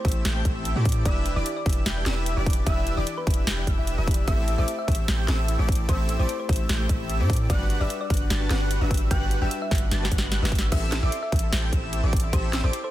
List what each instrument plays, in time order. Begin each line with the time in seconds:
Already playing: synth pluck C5
0.04 808-style bass A1, synth keys A3 E4 G4 C5, supersaw synth C4 E4 G4 A4 E5, digital synth lead E6, kick, closed hi-hat
0.08 closed hi-hat
0.12 closed hi-hat
0.25 808-style bass A1, supersaw synth C4 E4 G4 A4 G5, digital synth lead G6, snare, closed hi-hat
0.35 synth keys A3 E4 G4 C5
0.44 808-style bass A1, synth keys A3 E4 G4 C5, supersaw synth C4 E4 G4 A4 E5, digital synth lead E6, kick, closed hi-hat
0.65 closed hi-hat
0.75 808-style bass A2, synth keys A3 E4 G4 C5, supersaw synth C4 E4 G4 A4 D5, digital synth lead D6
0.85 kick, closed hi-hat
0.89 closed hi-hat
0.92 closed hi-hat
1.05 808-style bass E1, synth keys E3 E4 G4 D5, supersaw synth D4 E4 G4 B4 E5, synth pluck D5, digital synth lead E6, kick, closed hi-hat
1.26 closed hi-hat
1.35 808-style bass E1, synth keys E3 E4 G4 D5, supersaw synth D4 E4 G4 B4 D5, synth pluck D5, digital synth lead D6
1.46 closed hi-hat
1.56 synth pluck D5
1.65 808-style bass E1, synth keys E3 E4 G4 D5, supersaw synth D4 E4 G4 B4 E5, digital synth lead E6, kick, closed hi-hat
1.69 closed hi-hat
1.73 closed hi-hat
1.86 808-style bass E1, supersaw synth D4 E4 G4 B4 G5, digital synth lead G6, snare, closed hi-hat
1.96 synth keys E3 E4 G4 D5
2.05 808-style bass E1, synth keys E3 E4 G4 D5, supersaw synth D4 E4 G4 B4 E5, digital synth lead E6, snare, closed hi-hat
2.26 closed hi-hat
2.36 808-style bass E1, synth keys E3 E4 G4 D5, supersaw synth D4 E4 G4 B4 D5, digital synth lead D6
2.46 kick, closed hi-hat
2.50 closed hi-hat
2.53 closed hi-hat
2.66 808-style bass E1, synth keys E3 E4 G4 D5, supersaw synth D4 E4 G4 B4 E5, synth pluck E5, digital synth lead E6, kick, closed hi-hat
2.87 closed hi-hat
2.96 808-style bass E1, synth keys E3 E4 G4 D5, supersaw synth D4 E4 G4 B4 D5, synth pluck D5, digital synth lead D6
3.07 closed hi-hat
3.18 synth pluck B4
3.26 808-style bass E1, synth keys E3 E4 G4 D5, supersaw synth D4 E4 G4 B4 E5, digital synth lead E6, kick, closed hi-hat
3.31 closed hi-hat
3.34 closed hi-hat
3.47 808-style bass E1, supersaw synth D4 E4 G4 B4 G5, digital synth lead G6, snare, closed hi-hat
3.57 synth keys E3 E4 G4 D5
3.67 808-style bass E1, supersaw synth D4 E4 G4 B4 E5, digital synth lead E6, kick, closed hi-hat
3.77 808-style bass E1, synth keys E3 E4 G4 E5, supersaw synth D4 E4 G4 B4 E5, digital synth lead E6
3.87 closed hi-hat
3.98 808-style bass E1, supersaw synth D4 E4 G4 B4 E5, digital synth lead E6
4.06 synth keys E3 E4 G4 D5, kick, closed hi-hat
4.11 closed hi-hat
4.14 closed hi-hat
4.27 808-style bass A1, synth keys A3 E4 G4 C5, supersaw synth C4 E4 G4 A4 E5, synth pluck E5, digital synth lead E6, kick, closed hi-hat
4.48 closed hi-hat
4.57 808-style bass A1, synth keys A3 E4 G4 C5, supersaw synth C4 E4 G4 A4 D5, synth pluck E5, digital synth lead D6
4.68 closed hi-hat
4.79 synth pluck E5
4.87 808-style bass A1, synth keys A3 E4 G4 C5, supersaw synth C4 E4 G4 A4 E5, digital synth lead E6, kick, closed hi-hat
4.92 closed hi-hat
4.95 closed hi-hat
5.08 808-style bass A1, supersaw synth C4 E4 G4 A4 G5, digital synth lead G6, snare, closed hi-hat
5.18 synth keys A3 E4 G4 C5
5.27 808-style bass A1, synth keys A3 E4 G4 C5, supersaw synth C4 E4 G4 A4 E5, digital synth lead E6, snare, closed hi-hat
5.48 closed hi-hat
5.58 808-style bass A1, synth keys A3 E4 G4 C5, supersaw synth C4 E4 G4 A4 D5, digital synth lead D6
5.69 kick, closed hi-hat
5.72 closed hi-hat
5.75 closed hi-hat
5.88 808-style bass A1, synth keys A3 E4 G4 C5, supersaw synth C4 E4 G4 A4 E5, synth pluck C5, digital synth lead E6, kick, closed hi-hat
6.09 closed hi-hat
6.18 808-style bass A1, synth keys A3 E4 G4 C5, supersaw synth C4 E4 G4 A4 D5, synth pluck C5, digital synth lead D6
6.29 closed hi-hat
6.40 synth pluck C5
6.48 808-style bass A1, synth keys A3 E4 G4 C5, supersaw synth C4 E4 G4 A4 E5, digital synth lead E6, kick, closed hi-hat
6.53 closed hi-hat
6.56 closed hi-hat
6.69 808-style bass A1, supersaw synth C4 E4 G4 A4 G5, digital synth lead G6, snare, closed hi-hat
6.79 synth keys A3 E4 G4 C5
6.88 808-style bass A1, synth keys A3 E4 G4 C5, supersaw synth C4 E4 G4 A4 E5, digital synth lead E6, kick, closed hi-hat
7.10 closed hi-hat
7.19 808-style bass A2, synth keys A3 E4 G4 C5, supersaw synth C4 E4 G4 A4 D5, digital synth lead D6
7.30 kick, closed hi-hat
7.33 closed hi-hat
7.36 closed hi-hat
7.49 808-style bass G1, synth keys G3 D4 F#4 B4, supersaw synth D4 F#4 G4 B4 F#5, synth pluck D5, digital synth lead F#6, kick, closed hi-hat
7.70 closed hi-hat
7.80 808-style bass G1, synth keys G3 D4 F#4 B4, supersaw synth D4 F#4 G4 B4 E5, synth pluck D5, digital synth lead E6
7.90 closed hi-hat
8.01 synth pluck D5
8.09 808-style bass G1, synth keys G3 D4 F#4 B4, supersaw synth D4 F#4 G4 B4 F#5, digital synth lead F#6, kick, closed hi-hat
8.14 closed hi-hat
8.17 closed hi-hat
8.30 808-style bass G1, supersaw synth D4 F#4 G4 B4 A5, digital synth lead A6, snare, closed hi-hat
8.40 synth keys G3 D4 F#4 B4
8.50 808-style bass G1, synth keys G3 D4 F#4 B4, supersaw synth D4 F#4 G4 B4 F#5, digital synth lead F#6, snare, closed hi-hat
8.71 closed hi-hat
8.80 808-style bass G1, synth keys G3 D4 F#4 B4, supersaw synth D4 F#4 G4 B4 E5, digital synth lead E6
8.91 kick, closed hi-hat
8.94 closed hi-hat
8.97 closed hi-hat
9.10 808-style bass G1, synth keys G3 D4 F#4 B4, supersaw synth D4 F#4 G4 B4 F#5, synth pluck G5, digital synth lead F#6, kick, closed hi-hat
9.31 closed hi-hat
9.41 808-style bass G1, synth keys G3 D4 F#4 B4, supersaw synth D4 F#4 G4 B4 E5, synth pluck G5, digital synth lead E6
9.51 closed hi-hat
9.62 synth pluck E5
9.70 808-style bass G1, synth keys G3 D4 F#4 B4, supersaw synth D4 F#4 G4 B4 F#5, digital synth lead F#6, kick, snare, closed hi-hat
9.75 closed hi-hat
9.78 closed hi-hat
9.91 808-style bass G1, supersaw synth D4 F#4 G4 B4 A5, digital synth lead A6, snare, closed hi-hat
10.01 synth keys G3 D4 F#4 B4, snare
10.11 808-style bass G1, synth keys G3 D4 F#4 B4, supersaw synth D4 F#4 G4 B4 F#5, digital synth lead F#6, kick, closed hi-hat
10.18 snare
10.32 snare, closed hi-hat
10.41 808-style bass G1, synth keys G3 D4 F#4 B4, supersaw synth D4 F#4 G4 B4 E5, digital synth lead E6, snare
10.52 kick, closed hi-hat
10.55 snare, closed hi-hat
10.59 closed hi-hat
10.72 808-style bass A1, supersaw synth C4 E4 G4 A4 E5, synth arpeggio sound G4, synth pluck E5, digital synth lead E6, kick, closed hi-hat, crash
10.83 synth arpeggio sound A4
10.92 synth arpeggio sound C5, snare, closed hi-hat
11.03 808-style bass A1, supersaw synth C4 E4 G4 A4 D5, synth pluck E5, synth arpeggio sound E5, digital synth lead D6
11.12 synth arpeggio sound C5, closed hi-hat
11.23 synth arpeggio sound A4, synth pluck E5
11.32 808-style bass A1, supersaw synth C4 E4 G4 A4 E5, synth arpeggio sound G4, digital synth lead E6, kick, closed hi-hat
11.36 closed hi-hat
11.39 synth arpeggio sound A4, closed hi-hat
11.52 808-style bass A1, supersaw synth C4 E4 G4 A4 G5, synth arpeggio sound C5, digital synth lead G6, snare, closed hi-hat
11.63 synth arpeggio sound E5
11.73 808-style bass A1, supersaw synth C4 E4 G4 A4 E5, synth arpeggio sound C5, digital synth lead E6, kick, closed hi-hat
11.83 synth arpeggio sound E5
11.93 synth arpeggio sound G4, closed hi-hat
12.03 808-style bass A1, supersaw synth C4 E4 G4 A4 D5, synth arpeggio sound A4, digital synth lead D6
12.13 synth arpeggio sound C5, kick, closed hi-hat
12.17 closed hi-hat
12.20 synth arpeggio sound E5, closed hi-hat
12.33 808-style bass A1, supersaw synth C4 E4 G4 A4 E5, synth arpeggio sound G4, synth pluck C5, digital synth lead E6, kick, closed hi-hat
12.44 synth arpeggio sound A4
12.53 synth arpeggio sound C5, snare, closed hi-hat
12.64 808-style bass A1, supersaw synth C4 E4 G4 A4 D5, synth pluck C5, synth arpeggio sound E5, digital synth lead D6
12.73 synth arpeggio sound C5, closed hi-hat
12.84 synth arpeggio sound A4, synth pluck C5